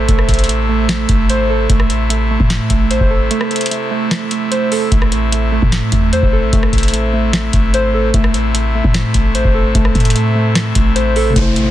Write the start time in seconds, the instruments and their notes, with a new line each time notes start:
Already playing: pipe organ C3 A3 E4, synth keys A4 C5
0.08 808-style bass A1, synth keys A3, kick, closed hi-hat
0.19 cross-stick
0.29 808-style bass A1, synth keys A3, kick, closed hi-hat
0.34 closed hi-hat
0.39 closed hi-hat
0.44 closed hi-hat
0.48 synth keys A3, closed hi-hat
0.69 synth keys A3
0.89 snare, closed hi-hat
1.09 808-style bass G#1, synth keys A3, kick, closed hi-hat
1.29 synth keys C5, closed hi-hat
1.50 synth keys A4
1.69 808-style bass A1, pipe organ A3, synth keys A3, kick, closed hi-hat
1.80 cross-stick
1.89 synth keys A3, closed hi-hat
2.09 synth keys A3, closed hi-hat
2.31 synth keys A3
2.40 808-style bass A2, kick
2.50 snare, closed hi-hat
2.70 808-style bass A1, synth keys A3, kick, closed hi-hat
2.91 synth keys C5, closed hi-hat
3.01 808-style bass G#1, kick
3.10 synth keys A4
3.31 synth keys A3, closed hi-hat
3.41 cross-stick
3.51 synth keys A3, closed hi-hat
3.56 closed hi-hat
3.61 closed hi-hat
3.66 closed hi-hat
3.71 synth keys A3, closed hi-hat
3.91 synth keys A3
4.11 cross-stick, snare, closed hi-hat
4.31 synth keys A3, closed hi-hat
4.51 synth keys C5, closed hi-hat
4.72 synth keys A4, open hi-hat
4.92 808-style bass A1, synth keys A3, kick, closed hi-hat
5.02 cross-stick
5.11 synth keys A3, closed hi-hat
5.32 synth keys A3, closed hi-hat
5.52 synth keys A3
5.62 808-style bass A2, kick
5.72 snare, closed hi-hat
5.92 808-style bass E2, synth keys A3, kick, closed hi-hat
6.13 synth keys C5, closed hi-hat
6.23 808-style bass A1, kick
6.33 synth keys A4
6.53 808-style bass A1, synth keys A3, kick, closed hi-hat
6.63 cross-stick
6.73 808-style bass A1, synth keys A3, kick, closed hi-hat
6.78 closed hi-hat
6.83 closed hi-hat
6.88 closed hi-hat
6.93 synth keys A3, closed hi-hat
7.13 synth keys A3
7.33 snare, closed hi-hat
7.53 808-style bass G#1, synth keys A3, kick, closed hi-hat
7.74 synth keys C5, closed hi-hat
7.94 synth keys A4
8.14 808-style bass A1, pipe organ C3 E4, synth keys A3, kick, closed hi-hat
8.24 cross-stick
8.34 synth keys A3, closed hi-hat
8.54 synth keys A3, closed hi-hat
8.75 synth keys A3
8.84 808-style bass A2, kick
8.94 snare, closed hi-hat
9.14 808-style bass A1, synth keys A3, kick, closed hi-hat
9.35 synth keys C5, closed hi-hat
9.45 808-style bass G#1, kick
9.55 synth keys A4
9.75 808-style bass A1, synth keys A3, kick, closed hi-hat
9.85 cross-stick
9.95 808-style bass A2, synth keys A3, kick, closed hi-hat
10.00 closed hi-hat
10.05 closed hi-hat
10.10 closed hi-hat
10.15 synth keys A3, closed hi-hat
10.35 synth keys A3
10.55 cross-stick, snare, closed hi-hat
10.75 808-style bass A1, synth keys A3, kick, closed hi-hat
10.96 synth keys C5, closed hi-hat
11.16 synth keys A4, open hi-hat
11.30 tine electric piano C3 A3
11.36 808-style bass A1, synth keys A3, tine electric piano E4, kick, closed hi-hat, downlifter
11.41 tine electric piano C5
11.56 synth keys A3, closed hi-hat